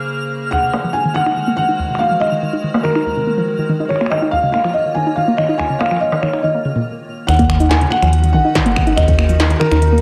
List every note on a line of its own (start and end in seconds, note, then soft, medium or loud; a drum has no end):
0.00 0.49 C#3 medium
0.00 0.49 A#3 medium
0.00 0.49 G#4 medium
0.00 0.49 C5 medium
0.00 6.86 F6 medium
0.10 closed hi-hat medium
0.31 closed hi-hat soft
0.42 closed hi-hat soft
0.47 0.95 F#5 loud
0.47 closed hi-hat medium
0.52 0.56 D#2 medium
0.52 6.82 D#3 medium
0.52 3.87 G#3 medium
0.52 3.87 F#4 medium
0.52 3.87 C5 medium
0.52 finger snap medium
0.63 0.67 C3 medium
0.74 0.77 A#3 medium
0.74 finger snap medium
0.74 struck metal medium
0.84 0.91 F3 medium
0.84 closed hi-hat soft
0.93 1.16 G#5 loud
0.93 closed hi-hat medium
1.05 1.09 D#3 medium
1.14 1.22 D#3 medium
1.14 1.55 F#5 loud
1.14 finger snap medium
1.26 1.30 D#4 medium
1.26 finger snap soft
1.26 closed hi-hat soft
1.37 1.44 D#3 medium
1.37 closed hi-hat medium
1.48 1.51 A#3 medium
1.57 1.65 D#3 medium
1.57 2.01 F#5 loud
1.69 1.78 D#4 medium
1.69 closed hi-hat soft
1.79 1.83 D#2 medium
1.79 closed hi-hat medium
1.90 1.94 C3 medium
1.95 2.19 F5 medium
1.95 finger snap medium
2.00 2.04 A#3 medium
2.00 closed hi-hat soft
2.04 closed hi-hat soft
2.07 2.17 F3 medium
2.07 closed hi-hat soft
2.11 closed hi-hat soft
2.14 closed hi-hat soft
2.16 closed hi-hat medium
2.18 2.86 D#5 medium
2.18 finger snap medium
2.18 closed hi-hat soft
2.21 closed hi-hat medium
2.32 2.36 D#3 medium
2.43 2.49 D#3 loud
2.53 2.57 D#4 loud
2.53 closed hi-hat soft
2.64 2.70 D#3 medium
2.64 closed hi-hat medium
2.74 2.78 A#3 medium
2.74 struck metal medium
2.83 2.91 D#3 medium
2.83 3.65 A#4 loud
2.83 finger snap medium
2.83 closed hi-hat soft
2.95 3.05 D#4 loud
2.95 finger snap soft
3.06 3.10 D#2 medium
3.06 closed hi-hat medium
3.17 3.20 C3 medium
3.27 3.31 A#3 medium
3.38 3.44 F3 medium
3.38 closed hi-hat soft
3.48 closed hi-hat medium
3.59 3.63 D#3 medium
3.69 3.76 D#3 loud
3.69 closed hi-hat soft
3.80 3.84 D#4 medium
3.80 closed hi-hat soft
3.85 4.12 C#5 medium
3.85 closed hi-hat medium
3.90 3.97 D#3 medium
3.90 6.83 A#3 medium
3.90 6.83 F4 medium
3.90 6.83 C#5 medium
3.90 finger snap soft
3.90 closed hi-hat medium
3.96 finger snap soft
4.01 4.05 A#3 medium
4.01 finger snap soft
4.06 4.33 D#5 medium
4.06 finger snap medium
4.12 4.18 D#3 medium
4.12 finger snap medium
4.12 struck metal medium
4.22 4.32 D#4 loud
4.31 4.37 D#2 medium
4.31 4.51 F5 medium
4.31 closed hi-hat medium
4.43 4.47 C#3 medium
4.52 4.58 A#3 medium
4.52 4.75 F5 medium
4.52 finger snap medium
4.52 closed hi-hat soft
4.64 4.71 F3 medium
4.64 finger snap medium
4.64 closed hi-hat soft
4.73 4.94 D#5 medium
4.73 closed hi-hat medium
4.86 4.89 D#3 medium
4.95 5.03 D#3 medium
4.95 5.17 G#5 medium
5.07 5.11 D#4 medium
5.07 closed hi-hat soft
5.16 5.24 D#3 medium
5.16 5.38 F5 medium
5.28 5.32 A#3 loud
5.37 5.45 D#3 medium
5.37 5.59 D#5 medium
5.37 finger snap medium
5.49 5.59 D#4 loud
5.49 closed hi-hat soft
5.52 closed hi-hat soft
5.54 closed hi-hat medium
5.57 5.80 G#5 loud
5.57 finger snap medium
5.57 closed hi-hat soft
5.59 5.63 D#2 medium
5.59 closed hi-hat medium
5.70 5.74 C#3 medium
5.79 5.85 A#3 medium
5.79 6.02 F5 medium
5.79 finger snap medium
5.79 closed hi-hat soft
5.79 struck metal medium
5.83 finger snap medium
5.83 closed hi-hat soft
5.86 closed hi-hat soft
5.91 5.98 F3 medium
5.91 finger snap soft
5.96 6.23 D#5 medium
5.96 finger snap soft
5.96 closed hi-hat soft
6.02 closed hi-hat medium
6.12 6.16 D#3 medium
6.12 struck metal medium
6.21 6.29 D#3 medium
6.21 6.44 C#5 medium
6.21 finger snap medium
6.21 closed hi-hat soft
6.33 6.37 D#4 medium
6.33 finger snap soft
6.33 closed hi-hat soft
6.42 6.51 D#3 medium
6.42 6.83 D#5 medium
6.42 closed hi-hat medium
6.55 6.58 A#3 medium
6.65 6.72 C#3 medium
6.65 closed hi-hat soft
6.76 6.80 A#2 loud
6.76 closed hi-hat soft
7.27 7.85 D#2 loud
7.27 7.35 D#3 medium
7.27 10.01 D#3 medium
7.27 10.01 C#4 medium
7.27 10.01 D#4 medium
7.27 10.01 F#4 medium
7.27 7.71 F#5 loud
7.27 finger snap medium
7.27 closed hi-hat medium
7.31 closed hi-hat soft
7.34 closed hi-hat soft
7.36 7.43 A#3 loud
7.36 kick loud
7.36 closed hi-hat soft
7.39 closed hi-hat medium
7.42 closed hi-hat soft
7.50 7.56 D#3 medium
7.50 finger snap medium
7.60 7.70 D#4 loud
7.60 closed hi-hat soft
7.60 cabasa medium
7.69 7.75 D#2 medium
7.69 7.92 G#5 loud
7.69 snare loud
7.69 closed hi-hat medium
7.81 7.85 C#3 medium
7.81 closed hi-hat medium
7.90 7.96 A#3 medium
7.90 8.31 F#5 loud
7.90 finger snap medium
8.02 8.36 D#2 loud
8.02 8.09 F3 medium
8.02 finger snap medium
8.02 closed hi-hat soft
8.13 closed hi-hat medium
8.24 8.27 D#3 medium
8.24 closed hi-hat medium
8.33 8.41 A#1 medium
8.33 8.41 D#3 loud
8.33 8.99 F#5 loud
8.45 8.49 D#4 loud
8.55 8.62 D#3 medium
8.55 kick loud
8.55 snare loud
8.55 closed hi-hat medium
8.66 8.70 A#3 loud
8.66 closed hi-hat medium
8.76 8.83 D#3 medium
8.76 finger snap medium
8.76 kick loud
8.87 8.97 D#4 loud
8.87 closed hi-hat soft
8.96 9.01 D#2 medium
8.96 9.54 D#2 loud
8.96 9.62 D#5 loud
8.96 finger snap medium
8.96 kick medium
8.96 closed hi-hat medium
9.08 9.12 C#3 medium
9.08 kick loud
9.08 closed hi-hat medium
9.19 9.23 A#3 medium
9.19 finger snap medium
9.29 9.36 F3 medium
9.29 closed hi-hat soft
9.29 cabasa medium
9.40 snare loud
9.40 closed hi-hat medium
9.50 9.54 D#3 medium
9.50 closed hi-hat medium
9.60 9.67 D#3 loud
9.60 10.01 A#4 loud
9.60 finger snap medium
9.71 10.01 D#2 loud
9.71 9.75 D#4 loud
9.71 finger snap medium
9.71 closed hi-hat soft
9.82 9.89 D#3 medium
9.82 closed hi-hat medium
9.82 cabasa medium
9.93 9.96 A#3 loud
9.98 closed hi-hat medium